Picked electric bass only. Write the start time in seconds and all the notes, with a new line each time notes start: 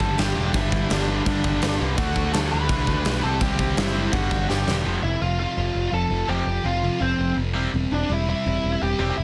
0.01 G1
0.19 G1
0.36 E1
0.54 G1
0.91 G1
1.26 G2
1.44 G1
1.63 G1
1.81 C2
1.98 D2
2.16 D2
2.35 D2
2.53 D2
2.69 C2
2.87 D2
3.06 B1
3.24 C2
3.41 C2
3.77 F#1
4.13 G1
4.31 G1
4.50 G1
4.67 E1
4.86 F1
5.03 F1
5.22 F1
5.57 F1
5.75 F1
5.93 F1
6.10 F1
6.28 F1
6.46 F1
6.65 F1
7.01 F1
7.19 F1
7.37 F1
7.55 E1
7.74 E1
7.91 E1
8.10 E1
8.46 E1
8.64 E1
8.82 E1
8.99 E1
9.18 E1